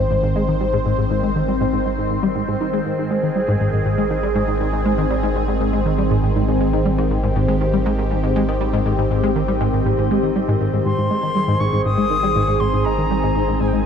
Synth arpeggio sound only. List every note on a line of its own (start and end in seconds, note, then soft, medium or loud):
0.11 0.18 G#2 medium
0.23 0.34 G#2 medium
0.36 0.43 G#3 medium
0.49 0.55 D#3 medium
0.61 0.65 G3 medium
0.73 0.77 G#2 loud
0.86 0.93 G#2 medium
0.98 1.05 G#2 medium
1.11 1.21 G#2 medium
1.23 1.30 G#3 medium
1.36 1.43 D#3 medium
1.48 1.53 G3 medium
1.61 1.65 G#2 medium
1.73 1.80 G#2 medium
1.86 1.93 G#2 medium
1.98 2.09 G#2 medium
2.11 2.18 G#2 medium
2.23 2.27 G3 loud
2.36 2.43 G#2 medium
2.48 2.55 G#2 loud
2.61 2.68 D#4 medium
2.73 2.80 G#3 loud
2.86 2.93 G#2 medium
2.98 3.09 G#2 medium
3.11 3.18 G#3 medium
3.23 3.30 D#3 medium
3.36 3.40 G3 medium
3.48 3.55 G#2 loud
3.61 3.68 G#2 medium
3.73 3.80 G#2 medium
3.86 3.96 G#2 medium
3.98 4.05 G#3 medium
4.11 4.18 D#3 medium
4.23 4.27 G3 medium
4.36 4.43 G#2 loud
4.48 4.55 G#2 medium
4.60 4.68 G#2 medium
4.73 4.84 G#2 medium
4.85 4.93 G#3 medium
4.98 5.05 D#3 medium
5.10 5.15 G3 medium
5.23 5.30 G#2 loud
5.36 5.43 G#2 medium
5.48 5.55 G#2 medium
5.61 5.71 G#2 medium
5.73 5.80 G#3 medium
5.86 5.93 D#3 medium
5.98 6.03 G3 medium
6.11 6.18 G#2 loud
6.23 6.30 G#2 medium
6.36 6.43 G#2 medium
6.48 6.59 G#2 medium
6.61 6.68 G#3 medium
6.73 6.80 D#3 medium
6.86 6.90 G3 medium
6.98 7.05 G#2 loud
7.11 7.18 G#2 medium
7.23 7.30 G#2 medium
7.36 7.46 G#2 medium
7.48 7.55 G#3 medium
7.61 7.68 D#3 medium
7.73 7.78 G3 medium
7.86 7.93 G#2 loud
7.99 8.05 G#2 medium
8.11 8.18 G#2 medium
8.23 8.34 G#2 medium
8.36 8.43 G#3 medium
8.48 8.55 D#3 medium
8.61 8.65 G3 medium
8.73 8.80 G#2 loud
8.86 8.93 G#2 medium
8.98 9.05 G#2 medium
9.11 9.21 G#2 medium
9.23 9.30 G#3 medium
9.36 9.43 D#3 medium
9.48 9.52 G3 medium
9.61 9.68 G#2 loud
9.73 9.80 G#2 medium
9.86 9.93 G#2 medium
9.98 10.09 G#2 medium
10.11 10.18 G#3 medium
10.23 10.30 D#3 medium
10.36 10.40 G3 medium
10.48 10.55 G#2 loud
10.61 10.68 G#2 medium
10.73 10.80 G#2 medium
10.86 10.93 G#2 medium
10.98 11.09 G#2 medium
11.11 11.18 G#3 medium
11.23 11.30 D#3 medium
11.36 11.40 G3 medium
11.48 11.55 G#2 loud
11.61 11.68 G#2 medium
11.73 11.80 G#2 medium
11.86 11.96 G#2 medium
11.98 12.05 G#3 medium
12.11 12.18 D#3 medium
12.23 12.27 G3 medium
12.36 12.43 G#2 loud
12.48 12.55 G#2 medium
12.61 12.68 G#2 medium
12.74 12.84 G#2 medium
12.86 12.93 G#3 medium
12.98 13.05 D#3 medium
13.11 13.15 G3 medium
13.23 13.30 G#2 loud
13.36 13.43 G#2 medium
13.48 13.55 G#2 medium
13.61 13.71 G#2 medium
13.73 13.80 G#3 medium